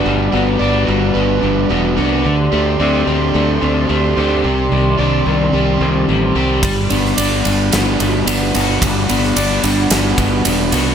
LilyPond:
<<
  \new Staff \with { instrumentName = "Analog synth pad" } { \time 4/4 \key g \major \tempo 4 = 110 << { <b' d''>1 | <d'' c'''>1~ | <d'' c'''>1 | <fis'' b''>1~ |
<fis'' b''>1 | } \\ { fis''1 | g'1 | ees1 | r1 |
r1 | } >> }
  \new Staff \with { instrumentName = "Overdriven electric guitar" } { \time 4/4 \key g \major <g d' fis' b'>8 fis'8 d''8 fis'8 b'8 d'8 fis'8 d'8 | d8 g'8 d''8 g'8 a'8 c'8 g'8 c'8 | c4 d''4 g'8 c'4 c'8 | g8 d'8 d''8 d'8 fis'8 b8 d'8 b8 |
g8 d'8 d''8 d'8 fis'8 b8 d'8 b8 | }
  \new Staff \with { instrumentName = "Overdriven electric guitar" } { \time 4/4 \key g \major <g b fis'>8 b8 d'8 g8 b8 g8 b8 fis'8 | d8 a8 c'8 d8 a8 d8 a8 g'8 | c8 g8 d'8 ees8 g8 ees8 g8 g'8 | g8 b8 d'8 g8 b8 g8 b8 fis'8 |
g8 b8 d'8 g8 b8 g8 b8 fis'8 | }
  \new Staff \with { instrumentName = "Fingered electric bass" } { \clef bass \time 4/4 \key g \major g,,8 g,,8 g,,8 g,,8 g,,8 g,,8 e,,8 c,8 | d,8 d,8 d,8 d,8 d,8 d,8 d,8 d,8 | c,8 c,8 c,8 c,8 c,8 c,8 a,,8 c,8 | g,,8 g,,8 g,,8 g,,8 g,,8 g,,8 g,,8 g,,8 |
g,,8 g,,8 g,,8 g,,8 g,,8 g,,8 e,,8 c,8 | }
  \new DrumStaff \with { instrumentName = "Drums" } \drummode { \time 4/4 r4 r4 r4 r4 | r4 r4 r4 r4 | r4 r4 r4 r4 | <bd cymr>8 cymr16 sn16 cymr8 cymr8 <cymr sn>8 cymr8 cymr8 cymr8 |
<bd cymr>8 cymr16 sn16 cymr8 cymr8 <cymr sn>8 <bd cymr>8 cymr8 cymr8 | }
>>